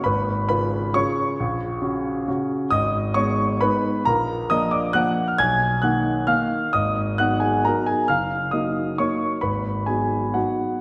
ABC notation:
X:1
M:3/4
L:1/16
Q:1/4=134
K:Abdor
V:1 name="Grand piano"
[cc']4 [cc']4 [dd']4- | [dd']4 z8 | [ee']4 [dd']4 [cc']4 | [Bb]4 [ee']2 [=d=d']2 [gg']3 f' |
[aa']4 [^f^f']4 [=f=f']4 | [ee']4 [gg']2 [Aa]2 [Bb]2 [Aa]2 | [ff']4 [ee']4 [dd']4 | [cc']4 [Aa]4 [Gg]4 |]
V:2 name="Grand piano"
A,,,4 [D,DF]4 [D,DF]4 | B,,,4 [D,DG]4 [D,DG]4 | A,,,4 [A,CE]4 [A,CE]4 | B,,,4 [F,B,=D]4 [F,B,D]4 |
=B,,,4 [^D,^A,^D]4 [D,A,D]4 | A,,,4 [G,CE]4 [G,CE]4 | G,,,4 [G,B,E]4 [G,B,E]4 | A,,,4 [G,CE]4 [G,CE]4 |]